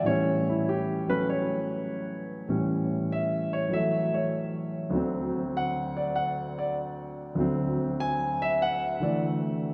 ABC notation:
X:1
M:4/4
L:1/8
Q:"Swing" 1/4=98
K:A
V:1 name="Grand piano"
c E =G B c4 | z2 e c e c z2 | z2 f d f d z2 | z2 g e f d z2 |]
V:2 name="Grand piano" clef=bass
[A,,E,=G,C]3 [F,A,C]4- [F,A,C] | [A,,E,=G,C]4 [E,F,A,]4 | [D,,D,F,=C]8 | [D,,D,F,=C]4- [D,,D,F,C] [D,E,A,]3 |]